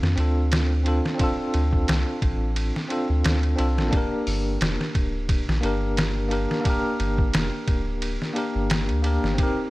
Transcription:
Already playing: tine electric piano C4 D4 F4 A4
0.02 sub bass F2, snare
0.16 sub bass D2, tine electric piano C4 D4 F4, ride
0.20 tine electric piano A4
0.52 snare, ride
0.83 tine electric piano C4 D4 F4, ride
0.88 tine electric piano A4
1.06 snare
1.15 tine electric piano C4 D4
1.19 tine electric piano F4, kick, ride
1.24 tine electric piano A4
1.54 sub bass D2, ride
1.73 kick
1.88 sub bass C2, snare, ride
2.22 sub bass A1, kick, ride
2.56 ride
2.76 snare
2.88 tine electric piano C4 D4 F4 A4, ride
3.10 sub bass D2
3.24 sub bass D2, snare, ride
3.43 ride
3.56 sub bass C2, tine electric piano C4 D4 F4, ride
3.60 tine electric piano A4
3.78 sub bass A1, snare
3.88 tine electric piano A#3 D4
3.93 tine electric piano G4, kick, ride
3.97 tine electric piano A#4
4.27 sub bass G1, open hi-hat
4.61 sub bass F1, snare, ride
4.81 snare
4.95 sub bass D1, kick, ride
5.29 kick, ride
5.48 sub bass A#1, snare
5.61 sub bass G1, tine electric piano A#3 D4 G4, ride
5.66 tine electric piano A#4
5.97 snare, ride
6.28 tine electric piano A#3 D4 G4, ride
6.33 tine electric piano A#4
6.51 snare
6.61 tine electric piano A#3 D4
6.65 tine electric piano G4, kick, ride
6.70 tine electric piano A#4
7.00 sub bass G1, ride
7.18 kick
7.34 sub bass F1, snare, ride
7.68 sub bass D1, kick, ride
8.02 ride
8.22 snare
8.34 tine electric piano A#3 D4 G4, ride
8.38 tine electric piano A#4
8.55 sub bass G1
8.70 snare, ride
8.89 sub bass D2, ride
9.02 tine electric piano A#3 D4 G4, ride
9.06 tine electric piano A#4
9.23 sub bass G1, snare
9.34 tine electric piano C4 D#4
9.38 tine electric piano G4, kick, ride
9.43 tine electric piano A#4

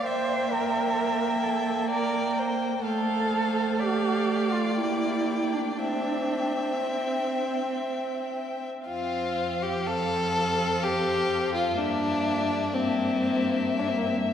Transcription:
0.05 viola A#3, cello C5, violin E5 G5
0.51 cello A#4
0.98 violin G5
1.43 cello A4
1.89 cello A#4, violin D5 G5
2.38 violin C5
2.84 viola A3, cello A4, violin C5 F5
3.78 cello G4, violin D5 F5
4.52 cello F4
4.75 viola A#3, cello E4, violin G5
5.53 cello D4
5.78 viola C4, cello D4, violin E5 G5
6.83 cello C4
8.86 cello F2, viola C4, violin F4 F5
9.62 violin G4
9.86 viola C4, violin A4 F5
10.83 violin G4
11.54 violin F4
11.77 cello G2, viola A#3, violin D4 E5
12.74 viola A#3, violin C4 E5
13.79 violin D4
13.88 violin C4
13.97 violin A#3
14.06 violin C4

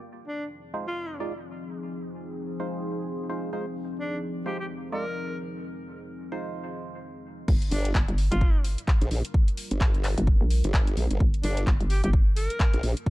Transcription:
0.04 analog synth pad F3 C4 D#4 G#4
0.27 alto saxophone D4
0.74 synth stab G#3 D#4 F4 C5
0.87 alto saxophone F4
1.20 synth stab G#3 D#4 F4 D5
2.60 synth stab G#3 D#4 F4 C5
3.30 synth stab G#3 D#4 F4 C5
3.53 synth stab G#3 D#4 F4 C5
3.99 alto saxophone D4
4.46 synth stab G#3 D#4 F4 C5, alto saxophone G4
4.60 alto saxophone G4
4.92 synth stab G#3 D#4 F4 D5, alto saxophone A#4
6.32 synth stab G#3 D#4 F4 C5
7.48 fm bass G1, analog synth pad G3 D4 F4 A#4, kick, crash
7.62 closed hi-hat
7.71 wobble bass G1, alto saxophone D4, open hi-hat
7.85 closed hi-hat
7.95 fm bass G1, kick, clap
8.08 fm bass G1, closed hi-hat
8.18 open hi-hat
8.31 fm bass G1, alto saxophone F4, closed hi-hat
8.41 kick
8.64 open hi-hat
8.78 closed hi-hat
8.88 kick, clap
9.01 wobble bass A#1, closed hi-hat
9.11 wobble bass A#1, open hi-hat
9.25 closed hi-hat
9.34 kick
9.48 closed hi-hat
9.57 open hi-hat
9.71 wobble bass G1, closed hi-hat
9.81 kick, clap
9.94 closed hi-hat
10.04 clap, open hi-hat
10.18 fm bass G1, closed hi-hat
10.27 kick
10.41 fm bass A#1
10.50 open hi-hat
10.64 wobble bass G1, closed hi-hat
10.74 kick, clap
10.87 closed hi-hat
10.97 wobble bass A#1, open hi-hat
11.11 wobble bass G1, closed hi-hat
11.20 fm bass G1, kick
11.34 closed hi-hat
11.43 wobble bass G1, alto saxophone D4, open hi-hat
11.57 closed hi-hat
11.67 fm bass G1, kick, clap
11.80 fm bass G1, closed hi-hat
11.90 alto saxophone G4, open hi-hat
12.04 fm bass G1, alto saxophone G4, closed hi-hat
12.13 kick
12.36 alto saxophone A#4, open hi-hat
12.50 closed hi-hat
12.60 kick, clap
12.74 wobble bass A#1, closed hi-hat
12.83 wobble bass A#1, open hi-hat
12.97 closed hi-hat
13.06 kick

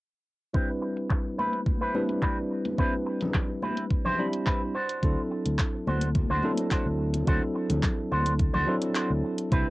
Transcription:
0.53 tine electric piano G3 C4 D4 E4 B4, clean electric guitar C4 E4 B4, kick
0.82 muted clean electric guitar stroke
0.96 muted clean electric guitar stroke, closed hi-hat
1.10 kick, clap
1.25 muted clean electric guitar stroke
1.38 clean electric guitar C4 E4 B4, high conga
1.53 closed hi-hat
1.66 kick, closed hi-hat, high conga
1.81 clean electric guitar C4 E4 B4
1.94 tine electric piano G3 C4 D4 E4 B4, high conga
2.09 closed hi-hat
2.22 clean electric guitar C4 E4 B4, kick, clap, closed hi-hat
2.50 muted clean electric guitar stroke
2.65 muted clean electric guitar stroke, closed hi-hat, high conga
2.78 tine electric piano G3 C4 D4 E4 B4, clean electric guitar C4 E4 B4, kick, closed hi-hat
3.06 muted clean electric guitar stroke
3.21 muted clean electric guitar stroke, closed hi-hat, low conga
3.34 kick, clap, closed hi-hat
3.49 muted clean electric guitar stroke
3.62 clean electric guitar C4 E4 B4, high conga
3.77 closed hi-hat
3.91 kick, closed hi-hat
4.05 clean electric guitar C4 E4 C5, low conga
4.19 tine electric piano G3 C4 D4 E4 B5
4.33 closed hi-hat
4.46 clean electric guitar C4 E4 B4, kick, clap, closed hi-hat
4.75 clean electric guitar D4 F#4 C5
4.89 closed hi-hat
5.02 fingered electric bass D2, tine electric piano F#3 C4 D4 E4 A4, kick, closed hi-hat
5.31 muted clean electric guitar stroke
5.45 fingered electric bass D2, muted clean electric guitar stroke, closed hi-hat
5.59 kick, clap, closed hi-hat
5.73 muted clean electric guitar stroke
5.87 fingered electric bass D2, clean electric guitar D4 F#4 C5, high conga
6.01 closed hi-hat
6.15 kick, closed hi-hat, high conga
6.30 fingered electric bass D2, clean electric guitar D4 F#4 C5
6.43 tine electric piano F#3 C4 D4 E4 A4, high conga
6.57 closed hi-hat
6.71 clean electric guitar D4 F#4 C5, kick, clap, closed hi-hat
6.86 fingered electric bass D2
6.99 muted clean electric guitar stroke
7.13 muted clean electric guitar stroke, closed hi-hat, high conga
7.27 fingered electric bass D2, tine electric piano F#3 C4 D4 E4 A4, clean electric guitar D4 F#4 C5, kick, closed hi-hat
7.55 muted clean electric guitar stroke
7.70 fingered electric bass D2, muted clean electric guitar stroke, closed hi-hat, low conga
7.83 kick, clap, closed hi-hat
7.98 muted clean electric guitar stroke
8.11 fingered electric bass D2, clean electric guitar D4 F#4 C5, high conga
8.26 closed hi-hat
8.39 kick, closed hi-hat
8.54 fingered electric bass D2, clean electric guitar D4 F#4 C5, low conga
8.67 tine electric piano F#3 C4 D4 E4 A4
8.82 closed hi-hat
8.95 clean electric guitar D4 F#4 C5, clap, closed hi-hat
9.10 fingered electric bass D2
9.24 muted clean electric guitar stroke
9.38 muted clean electric guitar stroke, closed hi-hat
9.51 fingered electric bass C2, tine electric piano G3 C4 D4 E4 B4, clean electric guitar C4 E4 B4, kick, closed hi-hat

